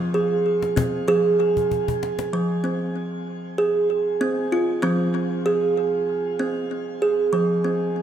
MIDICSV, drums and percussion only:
0, 0, Header, 1, 2, 480
1, 0, Start_track
1, 0, Key_signature, -4, "minor"
1, 0, Tempo, 623701
1, 1795, Time_signature, 4, 2, 24, 8
1, 6174, End_track
2, 0, Start_track
2, 0, Title_t, "Cajon"
2, 117, Note_on_c, 9, 38, 19
2, 194, Note_off_c, 9, 38, 0
2, 481, Note_on_c, 9, 38, 42
2, 558, Note_off_c, 9, 38, 0
2, 594, Note_on_c, 9, 36, 55
2, 671, Note_off_c, 9, 36, 0
2, 1079, Note_on_c, 9, 38, 18
2, 1156, Note_off_c, 9, 38, 0
2, 1207, Note_on_c, 9, 36, 33
2, 1284, Note_off_c, 9, 36, 0
2, 1319, Note_on_c, 9, 36, 32
2, 1396, Note_off_c, 9, 36, 0
2, 1449, Note_on_c, 9, 36, 40
2, 1526, Note_off_c, 9, 36, 0
2, 1561, Note_on_c, 9, 38, 40
2, 1638, Note_off_c, 9, 38, 0
2, 1683, Note_on_c, 9, 38, 44
2, 1760, Note_off_c, 9, 38, 0
2, 6174, End_track
0, 0, End_of_file